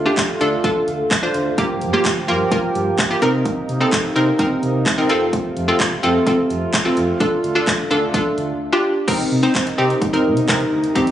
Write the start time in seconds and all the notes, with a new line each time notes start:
Already playing: D3 A3 F4
0.06 D4 F4 G4
0.17 A1, kick, clap, closed hi-hat
0.41 D2 D4 F4 A4, closed hi-hat
0.64 D1 D4 F4 A4, kick, closed hi-hat
0.88 D2, closed hi-hat
1.11 D1, kick, clap, closed hi-hat
1.23 D4 F4 C5
1.34 D2, closed hi-hat
1.58 G1 F3 A#3 F4 G4, kick, closed hi-hat
1.70 G1
1.81 G2, closed hi-hat
1.93 A#3 F4 G4
2.05 D2, kick, clap, closed hi-hat
2.28 G2 A#3 F4 A#4, closed hi-hat
2.52 G1 A#3 F4 A#4, kick, closed hi-hat
2.75 G2, closed hi-hat
2.99 G1, kick, clap, closed hi-hat
3.10 A#3 F4 G4
3.22 C3 C4 D#4 A#4, closed hi-hat
3.45 kick, closed hi-hat
3.57 C2
3.69 C3, closed hi-hat
3.80 C4 D#4 A4
3.92 G1, kick, clap, closed hi-hat
4.16 C3 C4 D#4 A#4, closed hi-hat
4.39 C2 C4 D#4 A#4, kick, closed hi-hat
4.63 C3, closed hi-hat
4.86 C2, kick, clap, closed hi-hat
4.98 C4 D#4 A#4
5.09 F1 A3 C4 F4 A4, closed hi-hat
5.33 kick, closed hi-hat
5.45 F1
5.56 F2, closed hi-hat
5.68 C4 F4 A4
5.80 C2, kick, clap, closed hi-hat
6.03 F2 C4 F4 A4, closed hi-hat
6.27 F1 C4 F4 A4, kick, closed hi-hat
6.50 F2, closed hi-hat
6.74 F1, kick, clap, closed hi-hat
6.85 C4 F4 A4
6.97 F2, closed hi-hat
7.20 D1 D3 A3 D4 F4 A4, kick, closed hi-hat
7.32 D1
7.44 D2, closed hi-hat
7.55 D4 F4 A4
7.67 A1, kick, clap, closed hi-hat
7.91 D2 D4 F4 A4, closed hi-hat
8.14 D1 D4 F4 A4, kick, closed hi-hat
8.38 D2, closed hi-hat
8.72 D4 F4 G4
9.08 C2 C3 A#3 C4 D#4 A#4, kick, closed hi-hat, crash
9.20 closed hi-hat
9.31 C3
9.43 C4 D#4 C5, closed hi-hat
9.55 C2, kick, clap, closed hi-hat
9.67 closed hi-hat
9.78 C3 C4 D#4 G4
9.90 closed hi-hat
10.02 G1, kick, closed hi-hat
10.13 C4 D#4 A#4, closed hi-hat
10.25 C3
10.37 closed hi-hat
10.48 C3 C4 D#4 A#4, kick, clap, closed hi-hat
10.60 closed hi-hat
10.72 D2
10.84 closed hi-hat
10.95 D#2 G3 C4 D#4 G4, kick, closed hi-hat
11.07 closed hi-hat